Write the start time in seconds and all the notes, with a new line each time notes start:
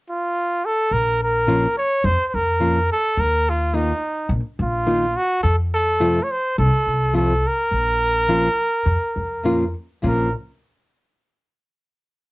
0.10 F4
0.65 A4
0.91 A#1 A#4
1.24 A#4
1.47 A#2 F3 A#3 C#4 F4
1.78 C#5
2.04 F2 C5
2.28 C5
2.34 F2 A#4
2.60 A#2 F3 A#3 C#4 F4
2.92 A4
3.17 D#2 A#4
3.50 F4
3.73 D#3 A#3 D#4 F4
4.29 A#1
4.59 A#1 F4
4.86 D#3 A#3 D#4 F4
5.17 F#4
5.43 F2 A4
5.74 A4
6.00 F2 C3 F3 A3 C4 F4
6.23 C#5
6.31 C5
6.58 C2 A4
6.87 C2
7.13 F2 C3 F3 A3 C4 F4 A4
7.47 A#4
7.71 A#1
8.29 A#2 F3 A#3 C#4 F4
8.86 F2
9.16 F2
9.44 A#2 F3 A#3 C#4 F4
10.02 A#1 A#2 F3 A#3 C#4 F4 A#4